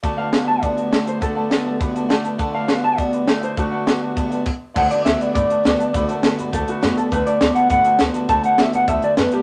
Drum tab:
CC |--------|--------|--------|------x-|
HH |x-x-xxxx|x-x-xxxx|x-x-xxxx|x-x-xx--|
SD |--o---o-|--o---o-|--o---o-|--o-----|
BD |o---o---|o---o---|o---o---|o---o-o-|

CC |x-------|--------|--------|--------|
HH |-xxxxxxx|xxxxxxxx|xxxxxxxx|xxxxxxxx|
SD |--o---o-|--o---o-|--o---o-|--o---o-|
BD |o---o---|o---o---|o---o---|o---o---|